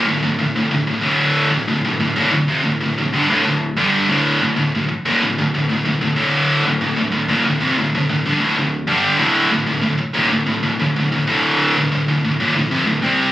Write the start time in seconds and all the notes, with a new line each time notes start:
0.07 D2 A2
0.23 D2 A2
0.39 D2 A2
0.56 D2 A2
0.71 D2 A2
0.87 D2 A2
1.02 D2 A2 D3
1.51 D2 A2
1.68 D2 A2
1.85 D2 A2
2.01 D2 A2
2.17 D#2 A#2
2.33 D2 A2
2.48 F2 C3
2.64 D2 A2
2.80 D2 A2
2.97 D2 A2
3.13 G2 D3
3.29 D2 A2
3.45 D2 A2
3.77 G2 D3 G3
4.09 D2 A2 D3
4.41 D2 A2
4.56 D2 A2
4.75 D2 A2
4.89 muted distorted electric guitar stroke
5.06 D#2 A#2
5.23 D2 A2
5.39 D2 A2
5.54 D2 A2
5.69 D2 A2
5.85 D2 A2
6.01 D2 A2
6.16 D2 A2 D3
6.65 D2 A2
6.81 D2 A2
6.97 D2 A2
7.12 D2 A2
7.28 D#2 A#2
7.45 D2 A2
7.60 F2 C3
7.77 D2 A2
7.95 D2 A2
8.09 D2 A2
8.26 G2 D3
8.41 D2 A2
8.56 D2 A2
8.87 G2 D3 G3
9.18 D2 A2 D3
9.51 D2 A2
9.67 D2 A2
9.82 D2 A2
9.99 muted distorted electric guitar stroke
10.15 D#2 A#2
10.31 D2 A2
10.47 D2 A2
10.64 D2 A2
10.80 D2 A2
10.97 D2 A2
11.12 D2 A2
11.27 D2 A2 D3
11.77 D2 A2
11.92 D2 A2
12.08 D2 A2
12.24 D2 A2
12.40 D#2 A#2
12.56 D2 A2
12.71 F2 C3
12.87 D2 A2
13.03 C3 G3 C4